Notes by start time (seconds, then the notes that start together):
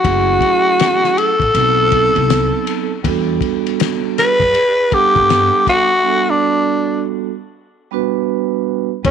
Already playing: F#4
0.03 F#1 F#3 A3 C#4 E4 G#4, kick, ride
0.41 kick, ride
0.80 snare, hi-hat pedal, ride
1.04 snare
1.18 A4, ride
1.40 A1, kick, ride
1.53 B1 F#3 B3 C4 D#4 A4, ride
1.91 F#3 B3 C4 D#4 A4, kick, ride
2.16 C2, ride
2.30 snare, hi-hat pedal, ride
2.67 ride
3.03 E2 G3 B3 D4 F#4 A4, kick, ride
3.41 kick, ride
3.67 ride
3.80 snare, hi-hat pedal, ride
4.18 B4, snare, ride
4.40 F#2, kick, ride
4.54 ride
4.90 G3 B3 D4 G4 A4 F#5, kick, ride
5.16 G2, kick, ride
5.30 snare, hi-hat pedal, ride
5.67 F#4, kick, ride
6.03 G3 B3 D4 F#4 A4
6.30 D4
7.91 G3 B3 D4 F#4 B4
9.03 E2 G3 B3 C#4 E4 F#4 A4, kick, ride